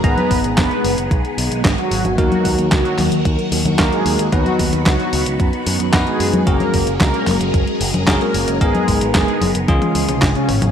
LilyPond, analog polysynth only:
\new Staff \with { instrumentName = "Analog polysynth" } { \time 4/4 \key aes \dorian \tempo 4 = 112 <ces' ces''>4 <ces' ces''>8. r4. <ges ges'>8. | <ges ges'>4 <ges ges'>8. r4. <aes aes'>8. | <fis fis'>4 <fis fis'>8. r4. <aes aes'>8. | <bes bes'>4 <bes bes'>8. r4. <bes bes'>8. |
<aes aes'>4 <aes aes'>8. r4. <des des'>8. | }